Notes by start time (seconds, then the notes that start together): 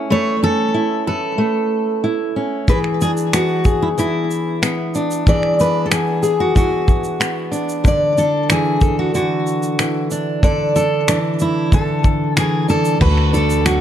Already playing: C#4 E4 B4
0.10 A3 B4 C#5
0.42 C#4 A4
0.74 E4
1.07 A4 B4
1.38 A3
2.04 E4
2.36 C#4
2.68 E3 G#4 B4, kick, shaker
2.84 finger snap
3.01 D4 G#4, shaker
3.17 shaker
3.33 B3 F#4, finger snap, shaker
3.65 G#4, kick, shaker
3.82 E4
3.98 E3 E4, shaker
4.31 shaker
4.62 B3, finger snap, shaker
4.95 D4, shaker
5.11 shaker
5.27 E3 G#4 D5, kick, shaker
5.43 finger snap
5.59 D4 B4, shaker
5.86 A4
5.91 B3 G#4, finger snap, shaker
6.23 G#4, shaker
6.40 F#4
6.55 E3 F#4, kick, shaker
6.88 kick, shaker
7.04 shaker
7.20 B3, finger snap, shaker
7.51 D4, shaker
7.69 shaker
7.84 D3 D5, kick, shaker
8.18 D4 A4, shaker
8.49 E3 G#4, finger snap, shaker
8.81 A4, kick, shaker
8.99 F#4
9.15 D3 F#4, shaker
9.47 shaker
9.63 shaker
9.79 E3, finger snap, shaker
10.11 D4, shaker
10.43 D3 A4 D5, kick, shaker
10.76 D4 A4, shaker
11.08 E3 D4, finger snap, shaker
11.39 E4, shaker
11.72 D3 A4, kick, shaker
12.04 kick, shaker
12.36 E3 G#4, finger snap, shaker
12.68 D4 A4, shaker
12.85 shaker
13.01 D2 D3 F#4 B4, kick, crash
13.17 finger snap
13.33 D4 A4, shaker
13.50 shaker
13.65 F#3 F#4, finger snap, shaker